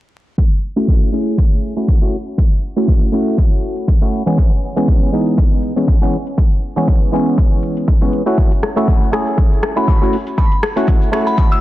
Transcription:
0.38 kick loud
0.38 closed hi-hat medium
0.52 closed hi-hat soft
0.76 1.10 A3 loud
0.76 1.10 C#4 medium
0.76 1.10 E4 medium
0.76 1.10 F#4 loud
0.76 closed hi-hat soft
0.88 kick medium
0.88 closed hi-hat medium
1.12 1.73 A3 medium
1.12 1.73 C#4 medium
1.12 1.74 E4 medium
1.12 1.74 G#4 medium
1.38 kick loud
1.38 closed hi-hat medium
1.63 closed hi-hat medium
1.76 1.98 A3 medium
1.76 1.98 C#4 medium
1.76 1.99 E4 medium
1.76 1.99 F#4 medium
1.76 closed hi-hat soft
1.88 kick medium
1.88 closed hi-hat medium
2.01 2.16 A3 medium
2.01 2.16 C#4 medium
2.01 2.17 E4 medium
2.01 2.17 F#4 loud
2.13 closed hi-hat soft
2.27 closed hi-hat medium
2.38 kick loud
2.38 closed hi-hat medium
2.52 closed hi-hat soft
2.76 3.10 A3 medium
2.76 3.10 C#4 medium
2.76 3.10 E4 medium
2.76 3.10 F#4 medium
2.76 closed hi-hat soft
2.88 kick loud
2.88 closed hi-hat medium
3.12 3.98 A3 medium
3.12 3.98 C#4 medium
3.12 3.99 E4 medium
3.12 3.99 F#4 loud
3.38 kick loud
3.38 closed hi-hat medium
3.63 closed hi-hat medium
3.77 closed hi-hat medium
3.88 kick loud
3.88 closed hi-hat medium
4.01 4.22 A3 medium
4.01 4.22 C#4 medium
4.01 4.23 E4 medium
4.01 4.23 F#4 medium
4.13 closed hi-hat soft
4.26 4.52 E3 medium
4.26 4.52 G#3 medium
4.26 4.52 B3 medium
4.26 4.52 C#4 loud
4.26 closed hi-hat soft
4.38 kick loud
4.38 closed hi-hat medium
4.52 closed hi-hat soft
4.76 5.10 E3 loud
4.76 5.10 G#3 medium
4.76 5.10 B3 medium
4.76 5.10 C#4 loud
4.76 closed hi-hat soft
4.88 kick loud
4.88 closed hi-hat medium
5.12 5.73 E3 medium
5.12 5.73 G#3 medium
5.12 5.73 B3 medium
5.12 5.74 D#4 medium
5.38 kick loud
5.38 closed hi-hat medium
5.63 closed hi-hat medium
5.76 5.98 E3 medium
5.76 5.98 G#3 medium
5.76 5.98 B3 medium
5.76 5.99 C#4 medium
5.76 closed hi-hat soft
5.88 kick loud
5.88 closed hi-hat medium
6.01 6.16 E3 medium
6.01 6.16 G#3 medium
6.01 6.17 B3 medium
6.01 6.17 C#4 loud
6.13 closed hi-hat soft
6.27 closed hi-hat soft
6.38 kick loud
6.38 closed hi-hat medium
6.52 closed hi-hat soft
6.76 7.10 E3 medium
6.76 7.10 G#3 medium
6.76 7.10 B3 medium
6.76 7.10 C#4 medium
6.76 closed hi-hat soft
6.88 kick loud
6.88 closed hi-hat medium
7.12 7.98 E3 medium
7.12 7.98 G#3 medium
7.12 7.99 B3 medium
7.12 7.99 C#4 loud
7.38 kick loud
7.38 closed hi-hat medium
7.63 closed hi-hat medium
7.77 closed hi-hat soft
7.88 kick loud
7.88 closed hi-hat medium
8.01 8.22 E3 medium
8.01 8.22 G#3 medium
8.01 8.23 B3 medium
8.01 8.23 C#4 medium
8.13 closed hi-hat soft
8.26 8.52 A3 medium
8.26 8.52 C#4 medium
8.26 8.52 E4 medium
8.26 8.52 F#4 loud
8.26 closed hi-hat soft
8.37 kick loud
8.37 closed hi-hat medium
8.37 cabasa medium
8.52 closed hi-hat soft
8.52 cabasa soft
8.63 cross-stick medium
8.63 open hi-hat loud
8.76 9.10 A3 loud
8.76 9.10 C#4 medium
8.76 9.10 E4 medium
8.76 9.10 F#4 loud
8.76 closed hi-hat soft
8.76 cabasa medium
8.88 kick loud
8.88 closed hi-hat medium
8.88 cabasa medium
9.02 cabasa soft
9.12 9.73 A3 medium
9.12 9.73 C#4 medium
9.12 9.74 E4 medium
9.12 9.74 G#4 medium
9.12 cross-stick medium
9.12 open hi-hat loud
9.27 cabasa medium
9.38 kick loud
9.38 closed hi-hat medium
9.38 cabasa medium
9.52 cabasa soft
9.63 cross-stick medium
9.63 open hi-hat loud
9.76 9.98 A3 medium
9.76 9.98 C#4 medium
9.76 9.98 E4 medium
9.76 9.99 F#4 medium
9.76 9.84 B5 medium
9.76 closed hi-hat soft
9.76 cabasa medium
9.88 9.97 B5 medium
9.88 kick loud
9.88 closed hi-hat medium
9.88 cabasa medium
10.01 10.16 A3 loud
10.01 10.16 C#4 medium
10.01 10.16 E4 medium
10.01 10.17 F#4 loud
10.01 cabasa soft
10.13 open hi-hat loud
10.27 closed hi-hat soft
10.27 cabasa medium
10.37 10.56 B5 medium
10.37 kick loud
10.37 closed hi-hat medium
10.37 cabasa medium
10.52 closed hi-hat soft
10.52 cabasa soft
10.63 cross-stick medium
10.63 open hi-hat loud
10.76 11.10 A3 medium
10.76 11.10 C#4 medium
10.76 11.10 E4 medium
10.76 11.10 F#4 medium
10.76 closed hi-hat soft
10.76 cabasa medium
10.87 kick loud
10.87 closed hi-hat medium
10.87 cabasa medium
11.02 cabasa soft
11.12 11.61 A3 medium
11.12 11.61 C#4 medium
11.12 11.61 E4 medium
11.12 11.61 F#4 loud
11.12 cross-stick medium
11.12 open hi-hat medium
11.27 11.43 B5 medium
11.27 cabasa medium
11.37 kick loud
11.37 closed hi-hat medium
11.37 cabasa medium
11.51 11.59 E6 medium
11.51 cabasa soft

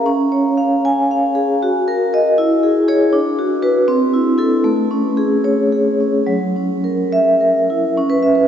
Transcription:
0.00 0.06 C#4 medium
0.00 0.10 A#4 medium
0.06 1.58 C#4 medium
0.32 0.74 C#5 medium
0.57 1.00 F5 medium
0.85 1.26 G#5 medium
1.11 1.52 F5 medium
1.35 1.62 G#4 medium
1.62 2.36 F#4 medium
1.88 2.12 A#4 medium
2.13 2.36 A#4 medium
2.13 2.36 D#5 medium
2.38 3.11 E4 medium
2.63 2.87 G#4 medium
2.88 3.11 G#4 medium
2.88 3.11 C#5 medium
3.13 3.86 D4 medium
3.39 3.61 F#4 medium
3.63 3.86 F#4 medium
3.63 3.86 B4 medium
3.88 4.64 C4 medium
4.13 4.37 E4 medium
4.38 4.62 E4 medium
4.38 4.63 A4 medium
4.64 6.24 A3 medium
4.91 5.35 C#4 medium
5.17 5.62 G#4 medium
5.44 5.89 C#5 medium
5.72 6.17 G#4 medium
6.00 6.29 C#4 medium
6.27 7.92 F#3 medium
6.56 7.02 C#4 soft
6.84 7.30 A#4 medium
7.12 7.58 E5 medium
7.41 7.86 A#4 soft
7.70 7.98 E4 soft
7.97 8.48 C#4 medium
8.10 8.31 B4 medium
8.23 8.44 E5 medium
8.35 8.48 B4 medium

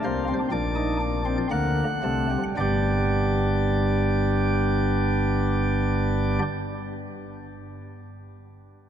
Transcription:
0.00 0.39 D4 loud
0.04 0.34 C2 medium
0.04 0.34 C3 medium
0.04 0.24 A#3 medium
0.04 0.33 C5 medium
0.28 0.48 C4 medium
0.52 1.37 A#1 medium
0.52 1.37 A#2 medium
0.52 0.99 D4 medium
0.52 1.37 D5 medium
0.75 0.97 D#4 medium
1.01 1.22 D4 medium
1.25 1.47 C4 medium
1.51 1.84 D2 medium
1.51 1.84 D3 medium
1.51 1.84 A#3 loud
1.51 2.43 F#5 medium
2.03 2.37 C2 medium
2.03 2.38 C3 medium
2.03 2.27 A3 medium
2.31 2.54 G3 medium
2.57 6.39 G1 medium
2.57 6.39 G2 medium
2.57 6.42 G3 medium
2.57 6.39 B3 medium
2.57 6.39 D4 medium
2.57 6.42 G4 medium
2.57 6.39 D5 medium

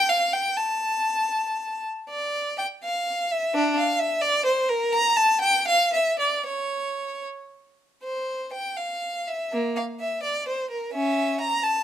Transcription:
0.10 0.33 F5 medium
0.33 0.57 G5 medium
0.57 1.84 A5 medium
2.10 2.55 D5 medium
2.58 2.66 G5 medium
2.84 3.31 F5 medium
3.31 3.55 E5 medium
3.54 3.77 D4 medium
3.77 4.00 F5 medium
3.99 4.23 E5 medium
4.22 4.46 D5 loud
4.46 4.69 C5 medium
4.69 4.93 A#4 medium
4.93 5.17 A#5 loud
5.17 5.42 A5 medium
5.41 5.67 G5 loud
5.68 5.93 F5 loud
5.93 6.19 E5 medium
6.19 6.46 D5 medium
6.46 7.25 C#5 medium
8.04 8.49 C5 medium
8.53 8.76 G5 medium
8.77 9.26 F5 medium
9.28 9.53 E5 medium
9.53 9.77 A#3 medium
9.76 9.84 F5 medium
10.00 10.24 E5 medium
10.23 10.47 D5 medium
10.48 10.71 C5 medium
10.71 10.94 A#4 medium
10.93 11.37 C#4 medium
10.93 11.39 E5 medium
11.41 11.63 A#5 medium
11.63 11.83 A5 medium

